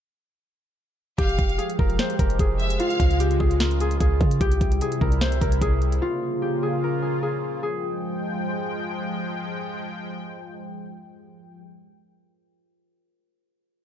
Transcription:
1.18 808-style bass F1, analog synth pad F3 G#3 G4, harp G4, violin section F5, kick, closed hi-hat
1.29 closed hi-hat
1.39 808-style bass F1, kick, closed hi-hat
1.49 closed hi-hat
1.58 harp G#4, closed hi-hat
1.70 closed hi-hat
1.79 808-style bass F1, harp A#4, kick
1.90 closed hi-hat
1.99 harp C5, snare, closed hi-hat
2.10 closed hi-hat
2.19 808-style bass F1, harp A#4, kick, closed hi-hat
2.30 closed hi-hat
2.39 808-style bass F1, harp G#4, kick, closed hi-hat
2.60 violin section E5, closed hi-hat
2.70 closed hi-hat
2.80 analog synth pad C#3 F4, harp F4, violin section F5, closed hi-hat
2.90 closed hi-hat
3.00 808-style bass C#2, kick, closed hi-hat
3.11 closed hi-hat
3.20 harp G4, closed hi-hat
3.31 closed hi-hat
3.40 808-style bass C#2, harp G#4, kick
3.51 closed hi-hat
3.60 harp A#4, snare, closed hi-hat
3.71 closed hi-hat
3.80 harp G#4, closed hi-hat
3.91 closed hi-hat
4.00 808-style bass C#2, harp G#4, kick, closed hi-hat
4.21 808-style bass C#3, kick, closed hi-hat
4.31 closed hi-hat
4.41 808-style bass C2, analog synth pad C3 G3 E4, harp G4, kick, closed hi-hat
4.52 closed hi-hat
4.61 808-style bass C2, kick, closed hi-hat
4.72 closed hi-hat
4.81 harp G#4, closed hi-hat
4.92 closed hi-hat
5.01 808-style bass C2, harp A#4, kick
5.12 closed hi-hat
5.21 harp C5, snare, closed hi-hat
5.32 closed hi-hat
5.41 808-style bass C2, harp A#4, kick, closed hi-hat
5.52 closed hi-hat
5.62 808-style bass C2, harp G#4, kick, closed hi-hat
5.82 closed hi-hat
5.92 closed hi-hat
6.02 analog synth pad C#3 A#3 F4, harp F4
6.42 harp G4
6.63 harp G#4
6.84 harp A#4
7.02 harp G#4
7.23 harp G#4
7.63 analog synth pad F3 G#3 G5, harp G#4

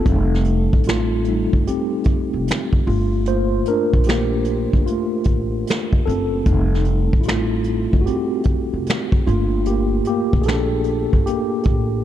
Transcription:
Already playing: tine electric piano C4 A4
0.06 upright bass F1, tine electric piano G3 A3 D#4, kick, closed hi-hat
0.35 snare
0.45 closed hi-hat
0.73 upright bass A1, kick
0.83 closed hi-hat
0.87 tine electric piano A3 F4, finger snap, snare
1.24 tine electric piano G3, closed hi-hat
1.28 tine electric piano A3 D#4
1.53 upright bass G1, kick
1.67 tine electric piano C4 G4, closed hi-hat
2.04 kick, closed hi-hat
2.33 upright bass F1
2.48 snare, closed hi-hat
2.52 finger snap
2.73 kick
2.87 upright bass G1, tine electric piano A3 F4, open hi-hat
3.26 tine electric piano A3 A#3 F4 C5, closed hi-hat
3.65 tine electric piano A#4, closed hi-hat
3.70 tine electric piano D4
3.93 upright bass A#1, kick
4.04 tine electric piano G4, closed hi-hat
4.09 tine electric piano A#3, finger snap, snare
4.45 closed hi-hat
4.73 upright bass G1, kick
4.86 tine electric piano A3 F4, closed hi-hat
5.24 upright bass A1, kick, closed hi-hat
5.67 snare, closed hi-hat
5.71 finger snap
5.93 kick
6.06 upright bass F#1, tine electric piano C4 A4, closed hi-hat
6.46 upright bass F1, tine electric piano G3 A3 D#4, kick, closed hi-hat
6.75 snare
6.85 closed hi-hat
7.13 upright bass A1, kick
7.21 tine electric piano E4, closed hi-hat
7.26 tine electric piano A3 F4, finger snap, snare
7.64 closed hi-hat
7.93 upright bass G1, kick
8.01 tine electric piano F#4
8.06 tine electric piano C4 G4, closed hi-hat
8.43 kick, closed hi-hat
8.73 upright bass F1
8.86 snare, closed hi-hat
8.91 finger snap
9.12 kick
9.27 upright bass G1, tine electric piano A3 A#3 F4, closed hi-hat
9.65 tine electric piano A#3 G4, closed hi-hat
10.05 tine electric piano G4, closed hi-hat
10.09 tine electric piano A#3
10.33 upright bass A#1, kick
10.42 tine electric piano G#4, closed hi-hat
10.46 tine electric piano D4 A4, finger snap, snare
10.84 closed hi-hat
11.13 upright bass G1, kick
11.26 tine electric piano A#3 G4, closed hi-hat
11.63 upright bass A1, kick, closed hi-hat

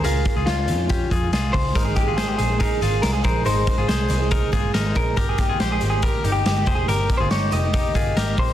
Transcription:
0.04 picked electric bass C#2, clean electric guitar F4 G#4 A#4, closed hi-hat
0.25 kick, closed hi-hat
0.36 picked electric bass C#2, clean electric guitar F4 G#4
0.46 picked electric bass C#2, clean electric guitar C#4 F4, snare, closed hi-hat
0.68 picked electric bass F2, closed hi-hat
0.89 clean electric guitar C#4 G4, kick, closed hi-hat
1.11 picked electric bass F2, clean electric guitar F4 G#4, kick, closed hi-hat
1.33 picked electric bass C2, clean electric guitar F4 G#4, snare, closed hi-hat
1.53 picked electric bass C#2, clean electric guitar C5, kick, open hi-hat
1.75 picked electric bass G#1, twelve-string acoustic guitar G#3 A#3 D#4 G#4 C5, clean electric guitar D#4 A#4, kick, closed hi-hat
1.85 clean electric guitar G#4
1.96 twelve-string acoustic guitar G#3 A#3 D#4 G#4 C5, clean electric guitar G4, kick, closed hi-hat
2.08 clean electric guitar F4 G#4
2.17 clean electric guitar G#4 C5, snare, closed hi-hat
2.28 clean electric guitar G4
2.38 picked electric bass A#1, twelve-string acoustic guitar G#3 A#3 D#4 G#4 C5, clean electric guitar G#4, closed hi-hat
2.59 clean electric guitar D#4 G#4 A#4, kick, closed hi-hat
2.81 picked electric bass G#1, twelve-string acoustic guitar G#3 A#3 D#4 G#4 C5, clean electric guitar F4 G#4, closed hi-hat
3.02 picked electric bass C2, clean electric guitar A#4, snare, closed hi-hat
3.13 twelve-string acoustic guitar G#3 A#3 D#4 G#4 C5, clean electric guitar G#4
3.24 picked electric bass A#1, clean electric guitar G#4 A#4 C5, kick, closed hi-hat
3.45 picked electric bass G#1, twelve-string acoustic guitar G#3 A#3 D#4 G#4 C5, clean electric guitar D#4 A#4 C5, closed hi-hat
3.67 twelve-string acoustic guitar G#3 A#3 D#4 G#4 C5, kick, closed hi-hat
3.78 picked electric bass G#1, clean electric guitar F4 G#4
3.88 picked electric bass C2, clean electric guitar G#4 C5, snare, closed hi-hat
4.09 picked electric bass C2, twelve-string acoustic guitar G#3 A#3 D#4 G#4 C5, closed hi-hat
4.31 clean electric guitar D#4 A#4, kick, closed hi-hat
4.52 picked electric bass G1, twelve-string acoustic guitar G#3 A#3 D#4 G#4 C5, clean electric guitar F4 G#4, kick, closed hi-hat
4.74 picked electric bass G#1, clean electric guitar D#4 A#4, snare, closed hi-hat
4.85 twelve-string acoustic guitar G#3 A#3 D#4 G#4 C5
4.95 picked electric bass A#1, clean electric guitar A#4, kick, closed hi-hat
5.16 picked electric bass G1, twelve-string acoustic guitar G3 A#3 D#4 G4, clean electric guitar G4 A#4, kick, closed hi-hat
5.29 clean electric guitar G#4
5.38 twelve-string acoustic guitar G3 A#3 D#4 G4, clean electric guitar G4, kick, closed hi-hat
5.49 clean electric guitar F4 G#4
5.60 picked electric bass A#1, clean electric guitar G4 C5, snare, closed hi-hat
5.72 clean electric guitar G#4
5.80 picked electric bass G#1, twelve-string acoustic guitar G3 A#3 D#4 G4, closed hi-hat
5.90 clean electric guitar G#4
6.02 clean electric guitar G4 A#4, kick, closed hi-hat
6.24 picked electric bass G1, twelve-string acoustic guitar G3 A#3 D#4 G4, clean electric guitar D#4 G4, closed hi-hat
6.32 clean electric guitar G4
6.45 picked electric bass G1, clean electric guitar G4, snare, closed hi-hat
6.56 twelve-string acoustic guitar G3 A#3 D#4 G4
6.66 picked electric bass F1, clean electric guitar G#4 C5, kick, closed hi-hat
6.75 clean electric guitar G#4
6.88 picked electric bass G1, twelve-string acoustic guitar G3 A#3 D#4 G4, clean electric guitar G4 A#4, closed hi-hat
7.09 twelve-string acoustic guitar G3 A#3 D#4 G4, kick, closed hi-hat
7.17 picked electric bass G1, clean electric guitar F4 G#4 C5
7.31 picked electric bass G1, clean electric guitar D#4 G4 C#5, snare, closed hi-hat
7.51 picked electric bass F1, twelve-string acoustic guitar G3 A#3 D#4 G4, clean electric guitar D#5, closed hi-hat
7.74 clean electric guitar D#4 G4, kick, closed hi-hat
7.94 picked electric bass G1, twelve-string acoustic guitar G3 A#3 D#4 G4, clean electric guitar F4 G#4, kick, closed hi-hat
8.16 picked electric bass G#1, clean electric guitar G4 A#4, snare, closed hi-hat
8.27 twelve-string acoustic guitar G3 A#3 D#4 G4
8.37 picked electric bass A#1, clean electric guitar C5, kick, open hi-hat

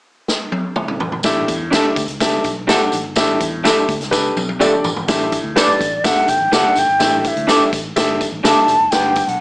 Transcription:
0.28 snare
0.52 high tom
0.76 mid tom
0.88 mid tom
1.00 floor tom
1.12 floor tom
1.23 fingered electric bass A1, grand piano A2 D4 G4 A4 E5, kick, snare, closed hi-hat, tambourine
1.48 fingered electric bass E2, kick, closed hi-hat, tambourine
1.71 clean electric guitar D4 G4 A4 E5, grand piano D4 G4 A4 E5, snare, closed hi-hat, tambourine
1.96 fingered electric bass D2, kick, closed hi-hat, tambourine
2.08 fingered electric bass C#2, closed hi-hat
2.20 grand piano D4 G4 A4 E5, kick, snare, closed hi-hat, tambourine
2.44 fingered electric bass B1, kick, closed hi-hat, tambourine
2.67 clean electric guitar D4 G4 A4 E5, grand piano D4 G4 A4 F#5, snare, closed hi-hat, tambourine
2.92 fingered electric bass A1, closed hi-hat, tambourine
3.04 fingered electric bass G1
3.16 fingered electric bass A1, grand piano A2 D4 G4 A4 E5, kick, snare, closed hi-hat, tambourine
3.41 fingered electric bass E2, kick, closed hi-hat, tambourine
3.64 grand piano D4 G4 A4 E5, clean electric guitar D4 G4 A4 E5, snare, closed hi-hat, tambourine
3.89 fingered electric bass D2, kick, closed hi-hat, tambourine
4.00 fingered electric bass C#2, snare, closed hi-hat
4.11 grand piano D4 G4 A4 B4, kick, snare, tambourine
4.36 fingered electric bass B1, high tom, tambourine
4.49 high tom
4.60 clean electric guitar D4 G4 A4 E5, grand piano D4 G4 A4 D5, mid tom, tambourine
4.84 fingered electric bass A1, floor tom, tambourine
4.96 fingered electric bass G#1, floor tom
5.08 fingered electric bass A1, grand piano A2 D4 G4 A4 E5, kick, snare, closed hi-hat, tambourine
5.32 kick, closed hi-hat, tambourine
5.44 fingered electric bass D2
5.56 grand piano D4 G4 A4 B4, clean electric guitar D4 G4 A4 D5, flute D5, snare, closed hi-hat, tambourine
5.68 muted fingered electric bass stroke
5.81 fingered electric bass A1, kick, closed hi-hat, tambourine
6.04 grand piano D4 G4 A4 E5, flute F#5, kick, snare, closed hi-hat, tambourine
6.28 fingered electric bass G1, flute G5, kick, closed hi-hat, tambourine
6.40 fingered electric bass A1
6.52 fingered electric bass C#2, clean electric guitar D4 G4 A4 D5, grand piano D4 G4 A4 E5, flute F#5, snare, closed hi-hat, tambourine
6.76 fingered electric bass G1, flute G5, closed hi-hat, tambourine
6.89 fingered electric bass G#1
6.99 fingered electric bass A1, grand piano A2 D4 G4 A4 E5, kick, snare, closed hi-hat, tambourine
7.24 flute E5, kick, closed hi-hat, tambourine
7.36 fingered electric bass D2, closed hi-hat
7.47 clean electric guitar D4 G4 A4 D5, grand piano D4 G4 A4 E5, snare, closed hi-hat, tambourine
7.60 muted fingered electric bass stroke
7.73 fingered electric bass A1, kick, closed hi-hat, tambourine
7.96 fingered electric bass G1, grand piano D4 G4 A4 E5, kick, snare, closed hi-hat, tambourine
8.21 kick, closed hi-hat, tambourine
8.32 fingered electric bass A1
8.44 fingered electric bass C#2, clean electric guitar D4 G4 A4 D5, grand piano D4 G4 A4 E5, flute A5, snare, closed hi-hat, tambourine
8.68 fingered electric bass F1, closed hi-hat, tambourine
8.80 fingered electric bass F#1
8.91 fingered electric bass G1, grand piano G2 D4 G4 B4 F#5, flute G5, kick, snare, closed hi-hat, tambourine
9.15 kick, closed hi-hat, tambourine
9.28 fingered electric bass B1, flute F#5, closed hi-hat

